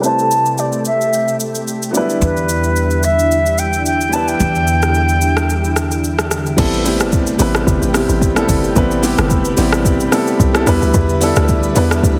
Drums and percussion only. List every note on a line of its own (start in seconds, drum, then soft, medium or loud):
0.04 shaker medium
0.19 shaker soft
0.31 shaker medium
0.46 shaker medium
0.58 shaker medium
0.72 shaker soft
0.85 shaker medium
1.01 shaker soft
1.13 shaker medium
1.28 shaker medium
1.40 shaker medium
1.55 shaker medium
1.68 shaker medium
1.83 shaker medium
1.95 shaker medium
2.10 shaker soft
2.22 shaker medium
2.37 shaker soft
2.49 shaker medium
2.64 shaker medium
2.76 shaker medium
2.90 shaker soft
3.03 shaker medium
3.19 shaker soft
3.31 shaker medium
3.46 shaker medium
3.58 shaker medium
3.73 shaker medium
3.86 shaker medium
4.01 shaker medium
4.13 shaker loud
4.28 shaker soft
4.40 shaker medium
4.55 shaker soft
4.67 shaker medium
4.82 cross-stick medium
4.82 shaker medium
4.94 shaker medium
5.09 shaker soft
5.21 shaker medium
5.37 cross-stick loud
5.37 shaker medium
5.50 shaker medium
5.64 shaker medium
5.76 cross-stick medium
5.76 shaker medium
5.91 shaker medium
6.04 shaker medium
6.19 cross-stick medium
6.19 shaker medium
6.31 cross-stick medium
6.31 shaker loud
6.46 shaker soft
6.58 kick loud
6.58 crash loud
6.58 shaker medium
6.73 shaker soft
6.86 open hi-hat medium
6.86 shaker loud
7.00 cross-stick medium
7.00 shaker medium
7.12 kick medium
7.12 shaker medium
7.27 shaker medium
7.39 open hi-hat medium
7.39 shaker medium
7.55 cross-stick loud
7.55 shaker medium
7.67 kick loud
7.67 shaker medium
7.82 shaker medium
7.94 cross-stick loud
7.94 open hi-hat medium
7.94 shaker medium
8.09 shaker medium
8.22 kick loud
8.22 shaker medium
8.36 cross-stick loud
8.36 shaker medium
8.49 kick loud
8.49 open hi-hat medium
8.49 shaker loud
8.64 shaker soft
8.76 kick loud
8.76 shaker medium
8.91 shaker soft
9.03 open hi-hat medium
9.03 shaker medium
9.18 cross-stick loud
9.18 shaker medium
9.30 kick loud
9.30 shaker medium
9.45 shaker medium
9.57 open hi-hat medium
9.57 shaker loud
9.72 cross-stick loud
9.72 shaker medium
9.85 kick loud
9.85 shaker medium
10.00 shaker medium
10.12 cross-stick medium
10.12 open hi-hat medium
10.12 shaker medium
10.27 shaker medium
10.40 kick loud
10.40 shaker medium
10.55 cross-stick loud
10.55 shaker medium
10.67 kick loud
10.67 cross-stick medium
10.67 open hi-hat medium
10.67 shaker loud
10.82 shaker soft
10.94 kick loud
10.94 shaker medium
11.09 shaker soft
11.21 open hi-hat medium
11.21 shaker medium
11.36 cross-stick loud
11.36 shaker medium
11.48 kick loud
11.48 shaker medium
11.63 shaker medium
11.76 open hi-hat medium
11.76 shaker medium
11.91 cross-stick loud
11.91 shaker medium
12.03 kick loud
12.03 shaker medium